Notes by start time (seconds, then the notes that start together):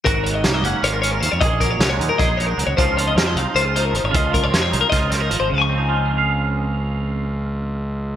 0.05 G#1 G#2 F#4 A#4, kick, closed hi-hat
0.24 D#3 C#5, closed hi-hat
0.34 D#5
0.44 C2 A#3 C#5, snare, closed hi-hat
0.54 D#5
0.63 F#1 C#4 F#5, closed hi-hat
0.83 G#1 F4 C#5, closed hi-hat
0.93 A#4
1.02 C#4 C#5, closed hi-hat
1.12 A#4
1.20 D#2 D#3 C5, closed hi-hat
1.32 F2 C#5
1.41 A#1 A#2 G#4 D#5, kick, closed hi-hat
1.60 F#3 A#4, kick, closed hi-hat
1.71 C#5
1.79 C2 G#3, snare, closed hi-hat
1.90 C#5
1.99 D#2 D#4, closed hi-hat
2.09 A#4
2.18 A#1 G#4 D#5, kick, snare, closed hi-hat
2.37 D#4 C#5, closed hi-hat
2.47 A#4
2.58 C#2 F#3, closed hi-hat
2.67 C#2 C#5
2.77 C#2 C#3 F3 C4 D#4 F4 C5, kick, closed hi-hat
2.97 F3 C#5, closed hi-hat
3.08 D#5
3.16 F2 C4 C#5, snare, closed hi-hat
3.27 D#5
3.35 C2 D#4 F5, closed hi-hat
3.55 C#2 F4 C5, closed hi-hat
3.65 G#4
3.76 D#4 C5, closed hi-hat
3.85 A#4
3.91 G#1 F3, closed hi-hat
3.96 C5
4.04 G#1 C#5
4.10 C#3 F4, closed hi-hat
4.15 C#2 D#5, kick
4.30 F3 A#4, kick, closed hi-hat
4.44 C#5
4.51 F2 C4, snare, closed hi-hat
4.62 C#5
4.72 C2 D#4, closed hi-hat
4.81 A#4
4.90 C#2 F4 D#5, kick, snare, closed hi-hat
5.10 C4 C#5, snare, closed hi-hat
5.20 D#4 A#4
5.30 G#1 F3, closed hi-hat
5.40 G#1 C5
5.49 C#2 C#3
5.54 F5
5.58 F3 G#5 C#6
5.69 C4
5.78 D#4
5.89 F4
6.06 G#4
6.13 C4
6.18 F5